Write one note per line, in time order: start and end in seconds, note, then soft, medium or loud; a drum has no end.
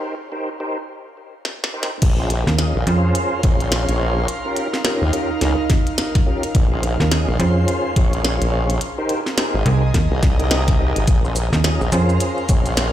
0.00 0.15 D#4 medium
0.00 0.15 G4 medium
0.00 0.15 A#4 medium
0.00 0.15 C5 loud
0.32 0.49 D#4 medium
0.32 0.49 G4 medium
0.32 0.49 A#4 medium
0.32 0.49 C5 medium
0.60 0.78 D#4 medium
0.60 0.78 G4 medium
0.60 0.78 A#4 medium
0.60 0.78 C5 medium
1.45 snare medium
1.64 snare medium
1.74 1.91 D#4 medium
1.74 1.91 G4 medium
1.74 1.91 A#4 medium
1.74 1.91 C5 loud
1.83 snare loud
2.01 2.45 A#1 loud
2.01 9.62 A#4 medium
2.01 kick loud
2.01 closed hi-hat medium
2.01 crash loud
2.19 2.31 C#4 medium
2.19 2.31 F4 medium
2.19 2.31 G#4 medium
2.19 2.31 C5 medium
2.29 9.73 F5 medium
2.29 closed hi-hat medium
2.47 2.73 D#2 medium
2.47 snare medium
2.59 2.76 C#4 medium
2.59 2.76 F4 medium
2.59 2.76 G#4 medium
2.59 2.76 D#5 medium
2.59 snare loud
2.59 closed hi-hat medium
2.76 2.85 A#1 loud
2.87 3.13 F2 loud
2.87 3.41 C#4 loud
2.87 3.41 F4 medium
2.87 3.41 G#4 medium
2.87 3.41 C5 loud
2.87 closed hi-hat medium
2.94 5.20 C6 medium
3.15 closed hi-hat medium
3.43 3.86 A#1 loud
3.43 4.27 C#4 medium
3.43 4.27 F4 medium
3.43 kick loud
3.43 closed hi-hat medium
3.60 closed hi-hat soft
3.72 snare loud
3.72 closed hi-hat medium
3.89 4.26 A#1 loud
3.89 closed hi-hat medium
4.28 7.46 D#4 medium
4.28 closed hi-hat medium
4.45 4.68 C#4 medium
4.45 4.68 F4 medium
4.45 4.68 G4 medium
4.45 4.68 A#4 loud
4.57 closed hi-hat medium
4.74 snare medium
4.85 5.02 C#4 medium
4.85 5.02 F4 medium
4.85 5.02 G4 medium
4.85 5.02 A#4 medium
4.85 snare loud
5.02 5.11 D#2 medium
5.13 5.31 C#4 medium
5.13 5.31 F4 medium
5.13 5.31 G4 medium
5.13 5.31 A#4 medium
5.13 closed hi-hat medium
5.41 5.56 C#2 medium
5.41 snare medium
5.41 closed hi-hat medium
5.70 kick loud
5.70 snare medium
5.70 closed hi-hat medium
5.87 closed hi-hat soft
5.98 snare loud
5.98 closed hi-hat medium
6.15 kick loud
6.15 snare soft
6.15 closed hi-hat medium
6.26 6.44 C#4 medium
6.26 6.44 F4 medium
6.26 6.44 G4 medium
6.26 6.44 A#4 loud
6.43 closed hi-hat medium
6.55 6.97 A#1 loud
6.55 kick loud
6.55 closed hi-hat medium
6.72 6.84 C#4 medium
6.72 6.84 F4 medium
6.72 6.84 G#4 medium
6.72 6.84 C5 medium
6.83 closed hi-hat medium
6.88 9.73 C6 medium
7.00 7.26 D#2 loud
7.00 snare medium
7.11 7.29 C#4 medium
7.11 7.29 F4 medium
7.11 7.29 G#4 medium
7.11 7.29 D#5 medium
7.11 snare loud
7.11 closed hi-hat medium
7.28 7.38 A#1 loud
7.39 7.66 F2 loud
7.39 7.94 C#4 loud
7.39 7.94 F4 medium
7.39 7.94 G#4 medium
7.39 7.94 C5 loud
7.39 closed hi-hat medium
7.68 closed hi-hat medium
7.96 8.39 A#1 loud
7.96 8.80 C#4 medium
7.96 8.80 F4 medium
7.96 8.80 G#4 medium
7.96 8.80 C#5 medium
7.96 kick loud
7.96 closed hi-hat medium
8.13 closed hi-hat soft
8.25 snare loud
8.25 closed hi-hat medium
8.41 8.79 A#1 loud
8.41 closed hi-hat medium
8.70 closed hi-hat medium
8.81 12.00 G#4 medium
8.81 closed hi-hat medium
8.98 9.20 D#4 medium
8.98 9.20 G4 medium
8.98 9.20 A#4 medium
8.98 9.20 C5 loud
9.09 closed hi-hat medium
9.26 11.99 D#5 medium
9.26 snare soft
9.37 9.55 D#4 medium
9.37 9.55 G4 medium
9.37 9.55 A#4 medium
9.37 9.55 C5 medium
9.37 snare loud
9.37 closed hi-hat medium
9.54 9.64 G#1 loud
9.66 9.92 C2 loud
9.66 9.83 D#4 medium
9.66 9.83 G4 medium
9.66 9.83 A#4 medium
9.66 9.83 C5 medium
9.66 closed hi-hat medium
9.85 11.99 A#5 medium
9.94 10.09 D#2 loud
9.94 kick medium
9.94 snare medium
9.94 closed hi-hat medium
10.11 10.93 C2 loud
10.23 kick loud
10.23 snare soft
10.23 closed hi-hat medium
10.39 10.62 D#4 medium
10.39 10.62 G4 medium
10.39 10.62 A#4 medium
10.39 10.62 D#5 medium
10.39 closed hi-hat soft
10.51 snare loud
10.51 closed hi-hat medium
10.68 kick loud
10.68 snare soft
10.68 closed hi-hat medium
10.79 11.03 D#4 medium
10.79 11.03 G4 medium
10.79 11.03 A#4 medium
10.79 11.03 D#5 loud
10.96 11.06 G#1 medium
10.96 closed hi-hat medium
11.07 11.50 A#1 loud
11.07 12.92 A#4 medium
11.07 kick loud
11.07 closed hi-hat medium
11.07 shaker soft
11.24 11.36 C#4 medium
11.24 11.36 F4 medium
11.24 11.36 G#4 medium
11.24 11.36 C5 medium
11.24 shaker soft
11.36 closed hi-hat medium
11.36 shaker medium
11.53 11.78 D#2 loud
11.53 snare soft
11.53 shaker soft
11.58 12.92 F5 medium
11.64 11.81 C#4 medium
11.64 11.81 F4 medium
11.64 11.81 G#4 medium
11.64 11.81 D#5 medium
11.64 snare loud
11.64 closed hi-hat medium
11.64 shaker soft
11.81 11.91 A#1 loud
11.81 shaker soft
11.91 12.19 F2 loud
11.91 12.46 C#4 medium
11.91 12.46 F4 medium
11.91 12.46 G#4 medium
11.91 12.46 C5 loud
11.91 12.92 C6 medium
11.91 closed hi-hat medium
11.91 shaker medium
12.09 shaker soft
12.20 closed hi-hat medium
12.20 shaker soft
12.38 shaker soft
12.49 12.92 A#1 loud
12.49 12.92 C#4 medium
12.49 12.92 F4 medium
12.49 12.92 G#4 medium
12.49 12.92 C#5 medium
12.49 kick loud
12.49 closed hi-hat medium
12.49 shaker medium
12.66 closed hi-hat soft
12.66 shaker soft
12.77 snare loud
12.77 closed hi-hat medium
12.77 shaker soft